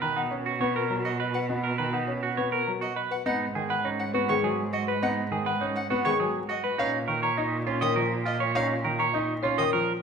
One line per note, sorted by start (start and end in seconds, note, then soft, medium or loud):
0.00 3.10 B2 medium
0.00 0.21 D#3 medium
0.00 0.21 B4 medium
0.00 0.21 A#5 medium
0.16 0.36 D#4 medium
0.16 0.36 F#5 medium
0.31 0.50 C#4 medium
0.31 0.51 C#5 medium
0.46 0.65 F#4 medium
0.61 0.80 B3 medium
0.61 0.80 B4 medium
0.61 0.76 C#5 medium
0.75 0.95 A#4 medium
0.90 1.09 F#3 medium
0.90 1.10 A#5 medium
1.05 1.24 F#4 medium
1.05 1.16 D#5 medium
1.20 1.39 B4 medium
1.20 1.39 D#5 medium
1.34 1.53 B4 medium
1.34 1.45 F#5 medium
1.49 1.68 B3 medium
1.49 1.68 D#5 medium
1.64 1.78 A#4 medium
1.78 1.98 D#3 medium
1.78 1.98 B4 medium
1.78 1.98 A#5 medium
1.93 2.12 D#4 medium
1.93 2.12 F#5 medium
2.08 2.27 C#4 medium
2.08 2.27 C#5 medium
2.23 2.42 F#4 medium
2.37 2.57 B3 medium
2.37 2.57 B4 medium
2.37 2.52 C#5 medium
2.52 2.71 A#4 medium
2.52 2.71 A#4 soft
2.67 2.86 F#3 medium
2.67 2.86 A#5 medium
2.81 3.01 F#4 medium
2.81 2.93 D#5 medium
2.96 3.15 B4 medium
2.96 3.15 D#5 medium
3.11 3.30 B4 medium
3.11 3.22 F#5 medium
3.26 6.63 G#2 medium
3.26 3.45 B3 medium
3.26 3.45 D#4 medium
3.26 3.45 D#5 medium
3.26 3.37 F#5 medium
3.55 3.74 D#3 medium
3.55 3.74 G#4 medium
3.55 3.74 G#5 medium
3.70 3.89 B4 medium
3.70 3.89 F#5 medium
3.84 4.04 C#4 medium
3.84 4.04 D#4 medium
3.84 4.04 C#5 medium
3.99 4.10 F#5 medium
4.14 4.33 B3 medium
4.14 4.33 F#4 medium
4.14 4.33 B4 medium
4.29 4.48 D#3 medium
4.29 4.48 G#4 medium
4.29 4.48 C#5 medium
4.29 4.40 C#6 medium
4.43 4.62 F#3 medium
4.43 4.63 G#4 medium
4.43 4.63 G#5 medium
4.73 4.92 F#4 medium
4.73 4.92 D#5 medium
4.73 4.84 D#5 medium
4.88 5.07 B4 medium
5.02 5.22 B3 medium
5.02 5.21 D#4 medium
5.02 5.21 D#5 medium
5.02 5.14 F#5 medium
5.32 5.51 D#3 medium
5.32 5.51 G#4 medium
5.32 5.51 G#5 medium
5.46 5.65 B4 medium
5.46 5.65 F#5 medium
5.61 5.80 C#4 medium
5.61 5.80 D#4 medium
5.61 5.80 C#5 medium
5.76 5.87 F#5 medium
5.90 6.10 B3 medium
5.90 6.09 F#4 medium
5.90 6.10 B4 medium
6.05 6.24 D#3 medium
6.05 6.24 G#4 medium
6.05 6.24 C#5 medium
6.05 6.16 C#6 medium
6.20 6.39 F#3 medium
6.20 6.39 G#4 medium
6.20 6.39 G#5 medium
6.49 6.68 F#4 medium
6.49 6.60 D#5 medium
6.49 6.68 D#5 medium
6.64 6.83 B4 medium
6.78 10.02 A#2 medium
6.78 6.98 C#4 medium
6.78 6.98 D#4 medium
6.78 6.90 F5 medium
6.78 6.98 F5 medium
7.08 7.27 D#3 medium
7.08 7.22 A#4 medium
7.08 7.27 C#6 medium
7.23 7.42 C#5 medium
7.23 7.42 A#5 medium
7.37 7.57 D#4 medium
7.37 7.57 D#5 medium
7.67 7.86 C#4 medium
7.67 7.86 F4 medium
7.67 7.86 C#5 medium
7.81 8.01 D#3 medium
7.81 8.01 A#4 medium
7.81 8.01 D#5 medium
7.81 7.93 D#6 medium
7.96 8.15 F3 medium
7.96 8.15 A#4 medium
7.96 8.15 C#6 medium
8.25 8.45 F4 medium
8.25 8.37 D#5 medium
8.25 8.45 F5 medium
8.40 8.59 C#5 medium
8.40 8.60 C#5 medium
8.55 8.74 C#4 medium
8.55 8.74 D#4 medium
8.55 8.74 F5 medium
8.55 8.66 F5 medium
8.84 9.04 D#3 medium
8.84 9.04 A#4 medium
8.84 9.04 C#6 medium
8.99 9.18 C#5 medium
8.99 9.18 A#5 medium
9.14 9.33 D#4 medium
9.14 9.33 D#5 medium
9.43 9.63 C#4 medium
9.43 9.62 F4 medium
9.43 9.62 C#5 medium
9.58 9.77 D#3 medium
9.58 9.77 A#4 medium
9.58 9.73 D#5 medium
9.58 9.69 D#6 medium
9.73 9.92 F3 medium
9.73 9.92 A#4 medium
9.73 9.92 C#6 medium